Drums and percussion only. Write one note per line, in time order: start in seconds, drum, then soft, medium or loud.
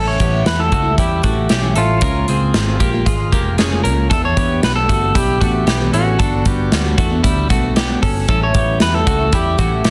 0.20 kick medium
0.20 closed hi-hat medium
0.46 snare loud
0.46 closed hi-hat medium
0.72 kick medium
0.72 closed hi-hat medium
0.98 kick medium
0.98 closed hi-hat medium
1.23 kick medium
1.23 closed hi-hat medium
1.49 snare medium
1.49 closed hi-hat medium
1.76 closed hi-hat medium
2.01 kick loud
2.01 closed hi-hat medium
2.28 closed hi-hat medium
2.54 snare loud
2.54 closed hi-hat medium
2.80 kick medium
2.80 closed hi-hat medium
3.06 kick medium
3.06 closed hi-hat medium
3.32 kick medium
3.32 closed hi-hat medium
3.58 snare medium
3.58 closed hi-hat medium
3.85 closed hi-hat medium
4.11 kick loud
4.11 closed hi-hat medium
4.37 kick medium
4.37 closed hi-hat medium
4.63 snare loud
4.63 closed hi-hat medium
4.89 kick medium
4.89 closed hi-hat medium
5.15 kick medium
5.15 closed hi-hat medium
5.41 kick medium
5.41 closed hi-hat medium
5.67 snare loud
5.67 closed hi-hat medium
5.94 closed hi-hat medium
6.19 kick loud
6.19 closed hi-hat medium
6.45 kick medium
6.45 closed hi-hat medium
6.72 snare loud
6.72 closed hi-hat medium
6.98 kick medium
6.98 closed hi-hat medium
7.24 kick medium
7.24 closed hi-hat medium
7.50 kick medium
7.50 closed hi-hat medium
7.76 snare medium
7.76 closed hi-hat medium
8.03 kick medium
8.03 open hi-hat medium
8.28 kick loud
8.28 closed hi-hat medium
8.54 kick medium
8.54 closed hi-hat medium
8.80 snare loud
8.80 closed hi-hat medium
9.07 kick medium
9.07 closed hi-hat medium
9.33 kick medium
9.33 closed hi-hat medium
9.58 kick medium
9.58 closed hi-hat medium
9.84 snare loud
9.84 closed hi-hat medium